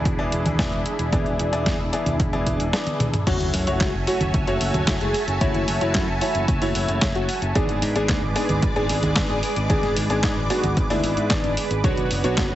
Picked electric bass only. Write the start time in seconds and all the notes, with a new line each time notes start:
0.05 E1
0.19 E1
0.32 E1
0.46 E1
0.59 E1
0.72 E1
0.99 E1
1.12 E1
1.26 E1
1.39 E1
1.53 E1
1.66 E2
1.79 E1
2.06 E1
2.20 E1
2.33 E1
2.46 E1
2.60 E1
3.27 F#1
3.40 F#1
3.54 F#2
3.67 F#1
3.80 C#2
3.94 F#1
4.20 F#1
4.34 F#1
4.47 F#1
4.61 F#1
4.74 F#1
4.88 F#1
5.01 F#1
5.28 F#1
5.41 F#1
5.54 F#1
5.68 F#1
5.81 F#1
5.95 F#2
6.08 F#1
6.35 F#1
6.48 F#1
6.62 F#1
6.75 F#1
6.88 F#1
7.02 F#1
7.15 F#1
7.42 F#1
7.55 G#1
7.69 G#1
7.82 G#2
7.96 G#1
8.09 D2
8.22 G#1
8.49 G#1
8.63 G#1
8.76 G#1
8.89 G#1
9.03 G#1
9.16 G#1
9.29 G#1
9.56 G#1
9.70 G#1
9.83 G#1
9.96 G#1
10.10 G#1
10.23 G#2
10.37 G#1
10.63 G#1
10.77 G#1
10.90 D2
11.04 G#1
11.17 G#2
11.30 G#1
11.44 G#1
11.70 G#1
11.84 B1
11.97 B1
12.11 F#1
12.24 B1
12.38 F#1
12.51 B1